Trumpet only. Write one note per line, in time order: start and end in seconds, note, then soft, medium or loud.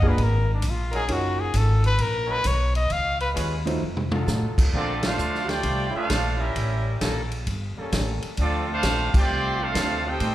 0.08 0.25 B4 medium
0.23 0.51 A#4 loud
0.54 0.71 D4 medium
0.70 0.95 F4 medium
0.96 1.14 G#4 loud
1.13 1.41 F#4 loud
1.40 1.59 G#4 loud
1.57 1.85 A4 medium
1.86 2.03 B4 loud
2.02 2.33 A#4 loud
2.31 2.48 B4 loud
2.47 2.75 C#5 loud
2.76 2.94 D#5 loud
2.92 3.20 F5 loud
3.21 3.30 B4 loud